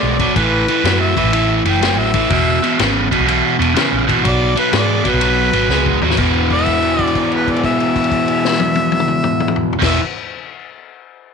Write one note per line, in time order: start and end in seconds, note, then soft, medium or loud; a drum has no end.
0.00 0.24 B1 medium
0.00 0.16 B2 medium
0.00 0.17 G#3 medium
0.00 0.35 D5 medium
0.20 0.34 B2 medium
0.20 0.35 F#3 medium
0.20 kick medium
0.20 ride medium
0.36 0.64 A1 loud
0.36 0.65 A2 medium
0.36 0.65 E3 medium
0.36 0.99 B4 medium
0.36 kick loud
0.36 ride medium
0.68 0.83 A2 medium
0.68 0.83 E3 medium
0.68 ride medium
0.84 1.12 F#2 medium
0.84 1.14 A2 medium
0.84 1.14 F#3 medium
0.84 snare loud
0.84 ride medium
1.01 1.63 E5 medium
1.17 1.31 A2 medium
1.17 1.32 E3 medium
1.17 kick medium
1.17 ride medium
1.24 1.60 A1 medium
1.33 1.62 A2 medium
1.33 1.62 E3 medium
1.33 ride medium
1.65 1.98 F#1 medium
1.65 1.80 A2 medium
1.65 1.80 E3 medium
1.65 ride medium
1.69 2.00 G5 medium
1.81 2.11 A2 medium
1.81 2.11 F#3 medium
1.81 snare loud
1.81 ride medium
1.98 2.26 A1 medium
1.98 2.30 E5 loud
2.14 2.29 A2 medium
2.14 2.29 E3 medium
2.14 kick medium
2.14 ride medium
2.30 2.58 E1 loud
2.30 2.59 E2 medium
2.30 2.59 B2 medium
2.30 2.79 E5 loud
2.30 kick loud
2.30 ride medium
2.63 2.77 E2 medium
2.63 2.78 B2 medium
2.63 ride medium
2.79 3.08 G#1 medium
2.79 3.08 E2 medium
2.79 3.08 C#3 medium
2.79 snare loud
2.79 ride medium
3.11 3.25 E2 medium
3.11 3.26 B2 medium
3.11 kick medium
3.11 ride medium
3.19 3.40 B1 medium
3.26 3.56 E2 medium
3.26 3.56 B2 medium
3.26 ride medium
3.59 3.74 E1 medium
3.59 3.73 E2 medium
3.59 3.74 B2 medium
3.59 ride medium
3.75 4.04 E2 medium
3.75 4.05 C#3 medium
3.75 snare loud
3.75 ride medium
3.92 4.13 A#1 medium
4.07 4.22 E2 medium
4.07 4.22 B2 medium
4.07 kick medium
4.07 ride medium
4.23 4.53 B1 loud
4.23 4.53 B2 medium
4.23 4.53 F#3 medium
4.23 4.57 D5 loud
4.23 kick loud
4.23 ride loud
4.56 4.71 B2 medium
4.56 4.71 F#3 medium
4.56 4.73 B4 medium
4.56 ride medium
4.72 5.01 G#2 medium
4.72 5.02 B2 medium
4.72 5.02 G#3 medium
4.72 snare loud
4.72 ride medium
4.77 5.11 D5 medium
5.05 5.19 B2 medium
5.05 5.20 F#3 medium
5.05 kick medium
5.05 ride medium
5.09 6.17 B4 loud
5.14 5.49 B1 medium
5.21 5.50 B2 medium
5.21 5.50 F#3 medium
5.21 ride medium
5.53 5.68 G#1 medium
5.53 5.68 B2 medium
5.53 5.68 F#3 medium
5.53 ride medium
5.69 5.98 C#2 medium
5.69 5.99 B2 medium
5.69 5.99 G#3 medium
5.69 snare medium
5.86 kick medium
6.01 6.16 D#2 medium
6.01 6.17 B2 medium
6.01 6.17 F#3 medium
6.01 mid tom medium
6.10 snare medium
6.17 9.71 E1 medium
6.17 9.74 E2 medium
6.17 9.75 B2 medium
6.17 kick loud
6.17 crash medium
6.21 9.76 E3 loud
6.50 7.03 E5 loud
6.50 kick medium
6.50 crash soft
6.59 crash soft
6.66 kick medium
6.66 crash soft
6.82 crash soft
6.99 kick medium
6.99 crash soft
7.03 7.20 D5 loud
7.07 crash soft
7.15 kick medium
7.15 crash soft
7.20 7.33 D5 medium
7.32 7.52 B4 medium
7.32 crash soft
7.47 7.65 D5 medium
7.47 kick medium
7.47 crash soft
7.56 crash soft
7.64 9.72 E5 loud
7.64 kick medium
7.64 crash soft
7.80 crash soft
7.96 kick medium
7.96 crash medium
8.04 crash soft
8.12 kick medium
8.12 crash medium
8.28 crash medium
8.45 snare medium
8.52 snare medium
8.60 high tom medium
8.75 high tom medium
8.92 high tom medium
9.00 mid tom loud
9.08 mid tom loud
9.24 mid tom loud
9.40 mid tom medium
9.48 mid tom loud
9.56 floor tom medium
9.73 floor tom loud
9.79 9.99 E1 medium
9.79 9.99 E2 medium
9.79 10.00 B2 medium
9.79 kick loud
9.79 snare medium
9.79 crash loud
9.83 10.01 E3 loud
9.83 10.00 E5 medium